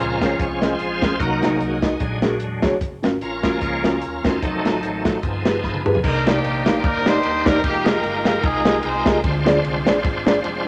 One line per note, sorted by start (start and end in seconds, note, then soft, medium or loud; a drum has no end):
0.00 0.34 C#2 medium
0.00 0.18 A#2 medium
0.00 1.16 F3 soft
0.00 1.16 G#3 soft
0.00 1.16 C4 medium
0.00 0.76 C#4 medium
0.00 0.39 F4 medium
0.00 0.41 A#4 medium
0.20 0.32 C#4 medium
0.20 0.32 G#4 medium
0.20 0.33 A#4 medium
0.20 0.33 C#5 medium
0.20 kick medium
0.20 snare loud
0.20 closed hi-hat medium
0.39 0.74 C2 medium
0.39 0.61 F4 medium
0.39 0.61 G#4 medium
0.39 0.52 C#5 medium
0.39 kick loud
0.39 closed hi-hat medium
0.53 0.61 C#5 medium
0.61 0.72 C#4 medium
0.61 1.16 F4 medium
0.61 1.16 G#4 medium
0.61 0.73 G#4 medium
0.61 0.73 A#4 medium
0.61 1.01 C5 medium
0.61 0.73 D#5 medium
0.61 snare loud
0.61 closed hi-hat medium
0.79 0.99 A#1 medium
0.79 closed hi-hat medium
1.01 1.18 B1 medium
1.01 1.13 C#4 medium
1.01 1.13 G#4 medium
1.01 1.13 A#4 medium
1.01 1.21 C5 loud
1.01 1.14 C5 medium
1.01 kick medium
1.01 snare loud
1.01 closed hi-hat medium
1.19 1.39 C2 loud
1.19 1.79 C3 medium
1.19 1.79 D#3 medium
1.19 1.79 F#3 soft
1.19 1.79 A#3 medium
1.19 1.41 D#4 medium
1.19 1.97 F#4 medium
1.19 1.41 A#4 medium
1.19 kick loud
1.19 closed hi-hat loud
1.42 1.53 D#4 medium
1.42 2.19 D#4 medium
1.42 1.53 F#4 medium
1.42 2.19 G#4 medium
1.42 1.54 A#4 medium
1.42 1.54 C5 medium
1.42 snare loud
1.42 closed hi-hat medium
1.60 1.95 C2 medium
1.60 closed hi-hat medium
1.82 1.93 D#4 medium
1.82 1.94 F#4 medium
1.82 1.94 A#4 medium
1.82 1.94 D#5 medium
1.82 kick medium
1.82 snare loud
1.82 closed hi-hat medium
2.00 2.35 A#1 medium
2.00 2.59 A#2 medium
2.00 2.77 D3 soft
2.00 2.77 F#3 soft
2.00 2.77 G#3 soft
2.00 kick loud
2.00 closed hi-hat medium
2.22 2.34 D4 medium
2.22 2.34 F#4 medium
2.22 2.34 G#4 medium
2.22 2.35 A#4 medium
2.22 snare loud
2.22 closed hi-hat medium
2.40 2.60 E1 medium
2.40 closed hi-hat medium
2.62 2.78 F1 loud
2.62 2.74 D4 medium
2.62 2.74 F#4 medium
2.62 2.75 G#4 medium
2.62 2.75 C#5 loud
2.62 kick loud
2.62 snare loud
2.62 closed hi-hat medium
2.81 3.00 F#1 loud
2.81 kick loud
2.81 closed hi-hat loud
3.03 3.19 G#1 medium
3.03 3.14 C#4 medium
3.03 3.14 F4 medium
3.03 3.15 F#4 medium
3.03 3.15 A#4 medium
3.03 snare loud
3.03 closed hi-hat medium
3.21 3.56 A#1 medium
3.21 3.84 C#4 medium
3.21 3.61 F4 medium
3.21 3.60 A#4 medium
3.21 closed hi-hat medium
3.43 3.99 F3 medium
3.43 3.99 G#3 soft
3.43 3.99 A#3 medium
3.43 3.54 C#4 medium
3.43 3.55 F4 medium
3.43 3.55 F#4 medium
3.43 3.55 A#4 medium
3.43 kick medium
3.43 snare loud
3.43 closed hi-hat medium
3.61 4.04 C#2 medium
3.61 3.84 F4 medium
3.61 3.84 A#4 medium
3.61 3.83 C#5 medium
3.61 kick medium
3.61 closed hi-hat medium
3.83 3.95 C#4 medium
3.83 4.39 C#4 medium
3.83 3.95 F4 medium
3.83 4.39 F4 medium
3.83 3.95 F#4 medium
3.83 3.96 A#4 medium
3.83 4.26 A#4 medium
3.83 snare loud
3.83 closed hi-hat medium
4.01 4.21 D#1 medium
4.01 closed hi-hat medium
4.24 4.40 E1 loud
4.24 5.82 C4 medium
4.24 4.35 C#4 medium
4.24 5.82 D#4 medium
4.24 4.36 F4 medium
4.24 4.36 F#4 medium
4.24 5.82 A4 medium
4.24 4.36 A#4 medium
4.24 kick loud
4.24 snare loud
4.24 closed hi-hat medium
4.42 4.61 F1 loud
4.42 5.19 D#3 soft
4.42 5.19 F#3 soft
4.42 5.19 A3 medium
4.42 kick loud
4.42 closed hi-hat loud
4.64 4.80 A1 medium
4.64 4.75 D#4 medium
4.64 4.76 F4 medium
4.64 4.76 F#4 medium
4.64 4.76 A4 medium
4.64 snare loud
4.64 closed hi-hat medium
4.83 5.17 A1 medium
4.83 closed hi-hat medium
5.05 5.16 D#4 medium
5.05 5.16 F4 medium
5.05 5.16 F#4 medium
5.05 5.17 A4 medium
5.05 kick medium
5.05 snare loud
5.05 closed hi-hat medium
5.22 5.57 G1 loud
5.22 5.82 G2 medium
5.22 5.99 F3 soft
5.22 6.00 B3 medium
5.22 5.99 G#4 soft
5.22 kick loud
5.22 closed hi-hat medium
5.45 5.56 F4 medium
5.45 5.57 G4 medium
5.45 5.57 G#4 medium
5.45 5.57 B4 medium
5.45 snare loud
5.45 closed hi-hat medium
5.64 5.98 G#1 medium
5.64 6.01 B5 medium
5.64 kick medium
5.64 snare soft
5.75 high tom medium
5.85 5.96 F4 medium
5.85 5.97 G4 medium
5.85 5.97 G#4 medium
5.85 5.97 B4 loud
5.85 mid tom medium
5.95 floor tom medium
6.03 6.38 C2 loud
6.03 6.62 C3 medium
6.03 7.61 D#3 medium
6.03 7.61 A#3 medium
6.03 6.80 D4 medium
6.03 6.26 D#4 medium
6.03 7.61 G4 medium
6.03 6.24 A#4 medium
6.03 7.61 C5 medium
6.03 7.61 D5 medium
6.03 kick loud
6.03 crash loud
6.26 7.03 A#3 medium
6.26 6.37 D#4 medium
6.26 6.84 D#4 medium
6.26 6.65 G4 loud
6.26 6.37 G4 medium
6.26 6.37 A#4 medium
6.26 6.37 C5 medium
6.26 6.38 D5 medium
6.26 snare loud
6.26 ride medium
6.44 6.78 A#1 loud
6.44 ride medium
6.66 6.77 D#4 medium
6.66 6.77 G4 medium
6.66 6.83 G4 medium
6.66 6.77 A#4 medium
6.66 6.78 C5 medium
6.66 6.78 F5 medium
6.66 snare loud
6.66 ride medium
6.84 7.18 G1 loud
6.84 7.61 D4 medium
6.84 7.06 D#4 medium
6.84 7.06 A#4 loud
6.84 kick loud
6.84 ride medium
7.06 7.17 D#4 medium
7.06 7.60 D#4 medium
7.06 7.17 G4 medium
7.06 7.60 G4 medium
7.06 7.17 A#4 medium
7.06 7.46 C5 loud
7.06 7.18 C5 medium
7.06 7.18 D5 medium
7.06 snare loud
7.06 ride medium
7.23 7.43 D#1 medium
7.23 ride medium
7.46 7.61 E1 medium
7.46 7.57 D#4 medium
7.46 7.57 G4 medium
7.46 7.64 A#4 loud
7.46 7.57 A#4 medium
7.46 7.57 C5 medium
7.46 7.58 D5 medium
7.46 kick loud
7.46 snare loud
7.46 ride medium
7.64 7.98 F1 loud
7.64 9.21 G#3 medium
7.64 8.40 A#3 medium
7.64 9.21 D#4 medium
7.64 7.86 D#4 medium
7.64 9.21 F4 medium
7.64 7.85 G4 medium
7.64 9.21 A#4 medium
7.64 9.21 G5 medium
7.64 kick loud
7.64 ride medium
7.85 8.43 D#4 medium
7.85 7.97 F4 medium
7.85 7.97 G4 medium
7.85 8.63 G4 medium
7.85 7.97 G#4 medium
7.85 8.25 A#4 loud
7.85 7.97 A#4 medium
7.85 7.97 D#5 medium
7.85 snare loud
7.85 ride medium
8.03 8.38 G1 loud
8.03 ride medium
8.25 8.37 F4 medium
8.25 8.37 G4 medium
8.25 8.37 G#4 medium
8.25 8.43 A#4 medium
8.25 8.37 A#4 medium
8.25 8.38 F5 medium
8.25 snare loud
8.25 ride medium
8.43 8.78 C2 loud
8.43 9.20 C4 medium
8.43 8.83 D#4 medium
8.43 8.83 G#4 loud
8.43 kick loud
8.43 ride medium
8.65 8.77 F4 medium
8.65 8.77 G4 medium
8.65 8.77 G#4 medium
8.65 8.77 A#4 medium
8.65 8.78 D#5 medium
8.65 snare loud
8.65 ride medium
8.83 9.03 C2 medium
8.83 9.21 D#4 medium
8.83 9.21 G#4 medium
8.83 9.15 C5 loud
8.83 ride medium
9.05 9.21 C#2 loud
9.05 9.17 F4 medium
9.05 9.17 G4 medium
9.05 9.17 G#4 medium
9.05 9.17 A#4 medium
9.05 9.18 D#5 medium
9.05 kick loud
9.05 snare loud
9.05 ride medium
9.24 9.58 D2 loud
9.24 9.83 D3 medium
9.24 10.68 G#3 medium
9.24 10.68 C4 medium
9.24 10.68 D4 medium
9.24 10.68 F4 medium
9.24 10.68 C5 medium
9.24 kick loud
9.24 ride medium
9.46 9.57 D4 medium
9.46 9.57 F4 medium
9.46 9.57 G#4 medium
9.46 9.58 C5 medium
9.46 9.58 D5 loud
9.46 snare loud
9.46 ride medium
9.64 9.83 C2 medium
9.64 ride medium
9.86 10.02 A#1 loud
9.86 9.97 D4 medium
9.86 9.97 F4 medium
9.86 9.98 G#4 medium
9.86 9.98 C5 medium
9.86 9.98 D5 loud
9.86 snare loud
9.86 ride medium
10.04 10.38 G#1 loud
10.04 kick loud
10.04 ride medium
10.26 10.37 D4 loud
10.26 10.37 F4 medium
10.26 10.38 G#4 medium
10.26 10.38 C5 medium
10.26 10.38 D5 loud
10.26 snare loud
10.26 ride medium
10.44 10.68 F1 loud
10.44 ride medium